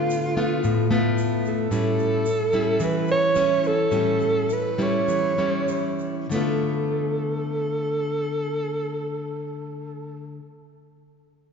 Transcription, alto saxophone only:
0.00 1.19 F4 medium
1.48 2.85 A4 medium
2.84 3.09 B4 medium
3.11 3.69 C#5 loud
3.67 4.55 A4 medium
4.53 4.84 B4 medium
4.82 6.02 C#5 medium
6.33 10.39 A4 medium

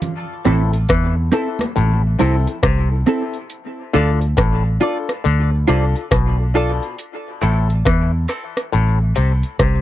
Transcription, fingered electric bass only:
0.47 0.86 A1 medium
0.90 1.29 E2 medium
1.78 2.16 A1 loud
2.21 2.45 C2 medium
2.64 3.03 C2 medium
3.95 4.34 D2 medium
4.39 4.77 A1 medium
5.26 5.65 D2 medium
5.69 5.93 C2 medium
6.12 6.79 B1 medium
7.43 7.82 A1 loud
7.87 8.26 E2 medium
8.74 9.13 A1 loud
9.18 9.42 C2 medium
9.60 9.81 C2 medium

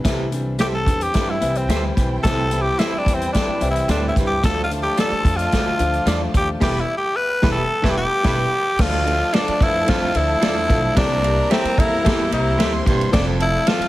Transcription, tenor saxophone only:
0.61 0.67 G4 loud
0.74 1.04 A4 loud
1.02 1.31 G4 medium
1.30 1.58 E4 medium
1.57 1.84 C4 medium
2.23 2.63 A4 loud
2.62 2.81 G4 medium
2.79 3.00 E4 medium
2.98 3.16 D4 medium
3.14 3.32 C4 medium
3.33 3.67 D4 medium
3.71 3.88 E4 medium
3.90 4.06 D4 medium
4.08 4.16 E4 medium
4.27 4.43 G4 medium
4.45 4.61 A4 loud
4.64 4.71 F4 medium
4.83 4.98 G4 loud
5.00 5.38 A4 loud
5.36 6.17 F4 loud
6.37 6.49 G4 loud
6.63 6.82 G4 loud
6.80 6.97 E4 loud
6.97 7.18 G4 loud
7.16 7.51 B4 loud
7.52 7.92 A4 loud
7.90 7.97 G4 loud
7.98 8.83 G4 loud
8.81 9.35 F4 loud
9.34 9.64 D4 loud
9.63 9.91 E4 loud
9.90 10.18 F4 loud
10.17 10.97 E4 loud
10.98 11.53 D4 loud
11.52 11.81 C4 loud
11.79 12.33 E4 loud
12.34 12.83 E4 medium
13.13 13.25 D4 medium
13.42 13.70 E4 loud
13.68 13.88 F4 loud

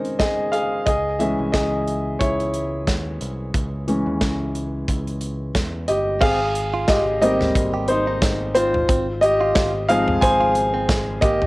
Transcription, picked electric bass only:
0.87 1.35 C#2 medium
1.39 1.52 C2 medium
1.54 2.17 C#2 medium
2.21 2.87 C#2 medium
2.87 3.18 D#2 medium
3.21 3.52 C2 medium
3.54 4.03 C#2 medium
4.06 4.20 D#2 medium
4.21 4.84 C#2 medium
4.88 5.51 C#2 medium
5.55 5.86 E2 medium
5.89 6.20 G1 medium
6.22 6.84 G#1 loud
6.88 7.51 G#1 loud
7.56 8.85 G#1 loud
8.89 9.52 G#1 loud
9.56 10.18 G#1 loud
10.23 11.18 G#1 loud
11.23 11.47 G#1 medium

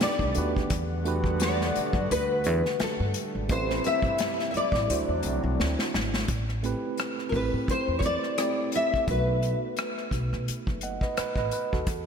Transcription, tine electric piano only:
0.00 0.35 A3 medium
0.00 0.36 D4 medium
0.00 0.72 D#4 medium
0.00 0.37 G4 medium
0.00 0.38 B4 medium
0.35 0.61 A3 medium
0.35 0.61 D4 medium
0.35 0.62 F#4 medium
0.35 0.62 G4 medium
0.35 0.62 B4 medium
1.05 1.48 A3 medium
1.05 1.48 D4 medium
1.05 1.48 F#4 medium
1.05 1.49 G4 medium
1.05 1.49 B4 medium
3.49 3.75 A3 medium
3.49 3.75 C4 medium
3.49 3.76 E4 medium
3.49 3.76 G4 medium
3.49 3.76 B4 medium
4.88 5.31 A3 medium
4.88 5.32 D4 medium
4.88 5.32 E4 medium
4.88 5.33 F#4 medium
4.88 5.33 C5 medium
6.63 6.89 A3 medium
6.63 6.89 C4 medium
6.63 6.89 E4 medium
6.63 6.90 G4 medium
6.63 6.90 B4 medium
7.32 8.31 A3 medium
7.32 8.32 C4 medium
7.32 8.32 E4 medium
7.32 8.33 G4 medium
7.32 8.33 B4 medium
8.37 8.63 A3 medium
8.37 8.64 C4 medium
8.37 8.64 E4 medium
8.37 8.65 G4 medium
8.37 8.65 D5 medium
9.07 9.33 A3 medium
9.07 9.33 B3 medium
9.07 9.34 D#4 medium
9.07 9.34 F#4 medium
9.07 9.35 B4 medium
10.83 11.01 D#5 soft
10.83 11.01 F#5 medium
11.02 11.17 B4 medium
11.02 11.17 D#5 medium
11.18 11.36 B4 medium
11.38 11.52 B4 medium
11.38 11.52 D#5 medium
11.53 11.71 B4 medium
11.73 12.05 F#4 medium
11.73 12.05 A4 medium

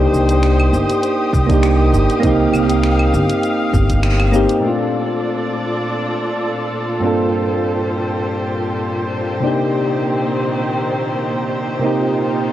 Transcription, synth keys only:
0.00 1.44 A#3 medium
0.00 1.45 D4 medium
0.00 1.46 D#4 medium
0.00 1.48 G4 loud
1.47 2.19 A#3 medium
1.47 2.20 D4 medium
1.51 2.21 D#4 medium
1.51 2.22 G4 medium
2.20 4.28 A#3 loud
2.20 4.29 C4 medium
2.24 4.31 D#4 medium
2.24 4.32 G4 loud
4.32 4.59 A#3 medium
4.32 4.60 C4 medium
4.32 4.61 D#4 medium
4.32 4.61 G4 loud
4.60 6.98 A#2 medium
4.60 7.00 A3 medium
4.60 7.00 C4 medium
4.66 7.01 D4 medium
4.66 7.02 F4 medium
7.00 9.38 G2 medium
7.00 9.39 A#3 medium
7.00 9.40 C4 medium
7.04 9.40 D4 medium
7.04 9.41 F4 medium
7.04 9.42 A4 medium
9.40 11.78 C3 medium
9.40 11.79 A#3 medium
9.40 11.80 D4 medium
9.45 11.81 D#4 medium
9.45 11.82 G4 medium
11.79 12.53 C3 medium
11.79 12.53 A#3 medium
11.79 12.53 C4 medium
11.84 12.53 D#4 medium
11.84 12.53 G4 medium

